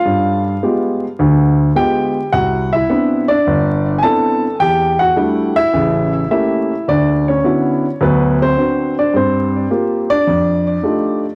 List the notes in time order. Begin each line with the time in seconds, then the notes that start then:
Already playing: F4 F5
0.05 G2
0.62 G#3 B3 F4 G4
1.19 D2 D3
1.75 G#3 B3 F4 G4 G5
2.33 C2 F#4 F#5
2.73 E4 E5
2.90 B3 C4 D4 E4
3.28 D4 D5
3.47 G1
3.98 G#5
4.03 B3 C4 D4 E4 A4 A5
4.60 E2 G4 G5
4.99 F#4 F#5
5.16 G3 A3 D4 E4 F#4
5.56 E4 E5
5.73 A1 C#3
6.31 A3 A#3 C#4 E4 G4 E5
6.88 D2 D4 D5
7.28 C#4 C#5
7.44 D3 B3 C#4 E4 F#4
8.01 D2 F#3 B3 B4
8.42 C4 C5
8.57 C4 D4 F#4
8.99 D4 D5
9.14 G2 C4 C5
9.70 A#3 F4 G4
10.10 D4 D5
10.27 F2
10.83 A3 D4 D#4 F4 G4